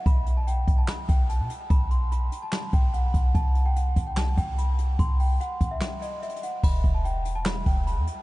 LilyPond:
<<
  \new Staff \with { instrumentName = "Celesta" } { \time 4/4 \key e \minor \tempo 4 = 146 b''8. a''16 g''8. a''16 b''8 g''8 a''8 r8 | b''8 c'''8 b''8. a''8. g''8 fis''4 | a''8. g''16 fis''8. g''16 a''8 g''8 b''8 r8 | c'''8 g''8 fis''8. e''8. dis''8 e''8 fis''8 |
b''8. a''16 g''8. a''16 b''8 g''8 b''8 r8 | }
  \new Staff \with { instrumentName = "808-style bass" } { \clef bass \time 4/4 \key e \minor b,,4. b,,8 r8 b,,8. b,16 r8 | b,,4. r4 b,,4 b,,8 | c,4. c,4 c,4. | c,4 r8 c,8 r2 |
e,,8 e,,2 e,,8. e,16 r8 | }
  \new DrumStaff \with { instrumentName = "Drums" } \drummode { \time 4/4 <hh bd>8 hh8 hh8 <hh bd>8 <hc hh sn>8 <hh bd>8 hh8 hh8 | <hh bd>8 hh8 hh8 hh8 <hc hh sn>8 <hh bd>8 hh8 <hh bd>8 | <hh bd>8 hh8 hh8 <hh bd>8 <hc hh sn>8 <hh bd>8 hh8 hh8 | <hh bd>8 hho8 hh8 <hh bd>8 <hc hh sn>8 hh8 \tuplet 3/2 { hh16 hh16 hh16 hh16 r16 r16 } |
<cymc bd>8 <hh bd>8 hh8 hh8 <hc hh sn>8 <hh bd>8 hh8 hh8 | }
>>